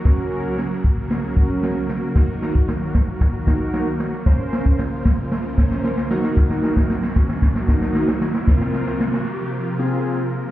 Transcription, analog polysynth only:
X:1
M:4/4
L:1/16
Q:1/4=114
K:Ebdor
V:1 name="Analog polysynth"
[DGB]4 z6 [DGB]3 z3 | [EGB]4 z6 [EGB]3 z3 | [DBc]4 z6 [DBc]3 z [EGB]2- | [EGB]4 z6 [EGB]3 z3 |
[CFB]4 z6 [CFA]3 z3 |]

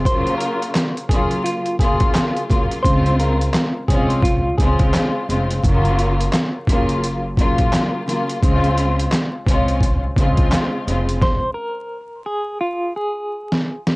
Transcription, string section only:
X:1
M:4/4
L:1/8
Q:"Swing 16ths" 1/4=86
K:Db
V:1 name="String section"
[D,G,B,F]2 z [D,G,B,F] z [D,G,B,F]2 [D,G,B,F] | [D,A,CF]2 z [A,CDF] z [D,A,CF]2 [D,A,CF] | [D,G,B,F]2 z [D,G,B,F] z [D,G,B,F]2 [D,G,B,F] | [D,A,CF]2 z [A,CDF] z [D,A,CF]2 [D,A,CF] |
z8 |]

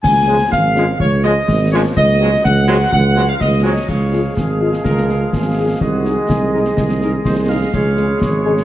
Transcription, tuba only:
X:1
M:2/4
L:1/8
Q:1/4=125
K:Db
V:1 name="Tuba" clef=bass
D,,2 A,,,2 | D,,2 A,,,2 | D,,2 D,,2 | D,,2 D,,2 |
D,,2 A,,,2 | D,,2 A,,,2 | C,,2 C,,2 | C,,2 C,,2 |
D,,2 A,,,2 |]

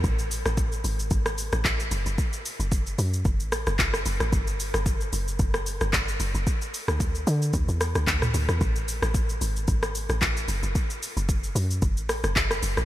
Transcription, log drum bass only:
X:1
M:4/4
L:1/16
Q:"Swing 16ths" 1/4=112
K:F#m
V:1 name="Log drum bass" clef=bass
A,,,3 A,,,3 G,,,2 G,,,3 A,,, A,,,2 F,,, F,,, | z3 F,,,3 F,,2 F,,, A,,,2 F,,, F,,,2 F,,, A,,, | =G,,,3 G,,,3 F,,,2 F,,,3 G,,, G,,,2 F,,, F,,, | z3 D,,3 D,2 D,, E,,2 D,, D,,2 D,, E,, |
A,,,3 A,,,3 G,,,2 G,,,3 A,,, A,,,2 F,,, F,,, | z3 F,,,3 F,,2 F,,, A,,,2 F,,, F,,,2 F,,, A,,, |]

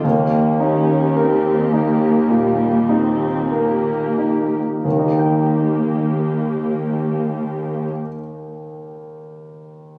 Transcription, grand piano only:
X:1
M:4/4
L:1/8
Q:1/4=47
K:Eb
V:1 name="Grand piano"
E,, E B E B,, E B E | [E,,E,EGBg]8 |]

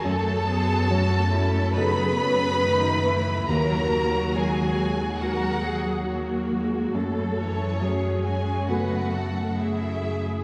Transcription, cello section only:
X:1
M:4/4
L:1/8
Q:1/4=69
K:F#dor
V:1 name="Cello section"
A G F E D C D E | F4 ^A G F2 | A2 G F B A G2 |]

